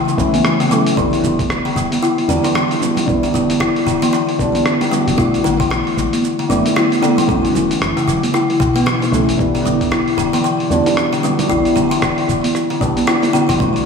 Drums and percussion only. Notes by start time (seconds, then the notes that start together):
0.08 high bongo, cabasa
0.18 kick, low conga, cabasa
0.34 open hi-hat, high conga, cabasa
0.45 cross-stick, cabasa
0.60 open hi-hat, high conga, cabasa
0.72 cabasa
0.86 open hi-hat, cabasa
0.97 kick, cabasa
1.13 open hi-hat, cabasa
1.24 low conga, cabasa
1.39 kick, open hi-hat, high bongo, cabasa
1.50 cross-stick, cabasa
1.66 open hi-hat
1.77 cabasa
1.92 open hi-hat, high conga, cabasa
2.04 cabasa
2.18 open hi-hat, high conga
2.30 cabasa
2.44 open hi-hat, high bongo, cabasa
2.55 cross-stick, cabasa
2.71 open hi-hat, cabasa
2.82 high conga, cabasa
2.97 open hi-hat, low conga, cabasa
3.08 kick, cabasa
3.24 open hi-hat, cabasa
3.34 low conga, cabasa
3.50 open hi-hat, high bongo, cabasa
3.61 cross-stick, cabasa
3.76 open hi-hat, high bongo
3.88 cabasa
4.02 open hi-hat, high conga, cabasa
4.13 cross-stick, cabasa
4.28 open hi-hat, high bongo
4.39 kick, cabasa
4.55 open hi-hat, high conga, cabasa
4.66 cross-stick, cabasa
4.81 open hi-hat, high bongo, high conga, cabasa
4.93 cabasa
5.08 open hi-hat, cabasa
5.18 kick, cabasa
5.34 open hi-hat, cabasa
5.45 low conga, cabasa
5.60 kick, open hi-hat, high bongo, cabasa
5.71 cross-stick, cabasa
5.87 open hi-hat
5.98 cabasa
6.13 open hi-hat, high conga, cabasa
6.25 cabasa
6.39 open hi-hat, high conga
6.51 cabasa
6.66 open hi-hat, high bongo, cabasa
6.77 cross-stick, cabasa
6.92 open hi-hat, cabasa
7.02 high conga, cabasa
7.18 open hi-hat, low conga, cabasa
7.29 kick, cabasa
7.45 open hi-hat, cabasa
7.55 low conga, cabasa
7.70 open hi-hat, high bongo, cabasa
7.82 cross-stick, cabasa
7.97 open hi-hat, high bongo, cabasa
8.09 cabasa
8.23 open hi-hat, high conga, cabasa
8.34 cross-stick, cabasa
8.50 open hi-hat, high bongo
8.60 kick, cabasa
8.75 open hi-hat, high conga, cabasa
8.87 cross-stick, cabasa
9.02 open hi-hat, high bongo, high conga, cabasa
9.14 cabasa
9.29 open hi-hat, cabasa
9.39 kick, cabasa
9.55 open hi-hat, cabasa
9.66 low conga, cabasa
9.81 kick, open hi-hat, high bongo, cabasa
9.92 cross-stick, cabasa
10.08 open hi-hat
10.19 cabasa
10.34 open hi-hat, high conga, cabasa
10.45 cabasa
10.60 open hi-hat, high conga
10.72 cabasa
10.86 open hi-hat, high bongo, cabasa
10.97 cross-stick, cabasa
11.13 open hi-hat, cabasa
11.23 high conga, cabasa
11.39 open hi-hat, low conga, cabasa
11.50 kick, cabasa
11.65 open hi-hat, cabasa
11.76 low conga, cabasa
11.91 open hi-hat, high bongo, cabasa
12.02 cross-stick, cabasa
12.18 open hi-hat, high bongo
12.29 cabasa
12.44 open hi-hat, high conga, cabasa
12.55 cross-stick, cabasa
12.70 open hi-hat, high bongo
12.81 kick, cabasa
12.97 open hi-hat, high conga, cabasa
13.08 cross-stick, cabasa
13.23 open hi-hat, high bongo, high conga, cabasa
13.35 cabasa
13.50 open hi-hat, cabasa
13.60 kick, cabasa
13.76 open hi-hat, cabasa